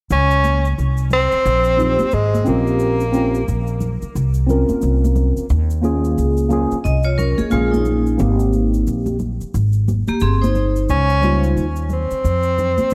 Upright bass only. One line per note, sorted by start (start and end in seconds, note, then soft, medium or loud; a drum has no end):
0.11 0.74 C#2 loud
0.78 1.29 C2 medium
1.33 muted upright bass stroke soft
1.46 1.97 A#1 loud
2.00 muted upright bass stroke medium
2.13 2.45 G#1 medium
2.47 3.44 A#1 medium
3.48 3.99 A#1 medium
4.02 muted upright bass stroke soft
4.15 4.67 C2 medium
4.70 muted upright bass stroke soft
4.83 5.34 C2 medium
5.37 muted upright bass stroke soft
5.50 6.14 D#2 loud
6.18 6.69 C#2 medium
6.72 muted upright bass stroke soft
6.85 7.36 C2 medium
7.39 muted upright bass stroke medium
7.52 8.16 A#1 medium
8.20 8.83 G#1 loud
8.87 9.38 A#1 medium
9.41 muted upright bass stroke soft
9.54 10.06 G#1 medium
10.08 muted upright bass stroke medium
10.22 10.86 G1 medium
10.89 11.53 C#2 loud
11.57 12.08 D#2 medium
12.11 muted upright bass stroke soft
12.24 12.76 F2 medium
12.79 muted upright bass stroke soft